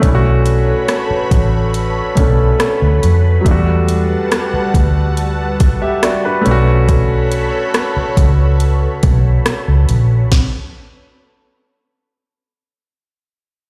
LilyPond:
<<
  \new Staff \with { instrumentName = "Analog synth pad" } { \time 4/4 \key b \minor \tempo 4 = 70 <a' b' cis'' b''>1 | <g fis'' a''>2.~ <g fis'' a''>8 <a' cis'' b''>8~ | <a' cis'' b''>1 | r1 | }
  \new Staff \with { instrumentName = "Grand piano" } { \time 4/4 \key b \minor << { r1 | r2 r8. <g' e''>16 <fis' d''>16 <d' b'>8 r16 | r1 | r1 | } \\ { <a cis' d' e' fis'>2~ <a cis' d' e' fis'>8 <a cis' d' a'>4. | <fis g a d' fis'>2.~ <fis g a d' fis'>8 <a cis' d' fis'>8~ | <a cis' d' fis'>2.~ <a cis' d' fis'>8 r8 | r1 | } >> }
  \new Staff \with { instrumentName = "Fingered electric bass" } { \clef bass \time 4/4 \key b \minor b,,4 r8 a,,4 b,,8 r16 d,16 eis,8 | e,4 r8 d,4~ d,16 r8. b,,8~ | b,,4 r8 cis,4 b,,8 r16 cis,16 ais,,8 | r1 | }
  \new DrumStaff \with { instrumentName = "Drums" } \drummode { \time 4/4 <hh bd>8 hh8 <hh ss>8 <hh bd>8 hh8 <hh bd>8 <hh ss>8 hh8 | <hh bd>8 hh8 <hh ss>8 <hh bd>8 hh8 <hh bd>8 <hh ss>8 hh8 | <hh bd>8 hh8 <hh ss>8 <hh bd>8 hh8 <hh bd>8 <hh ss>8 hh8 | <bd sn>4 r4 r4 r4 | }
>>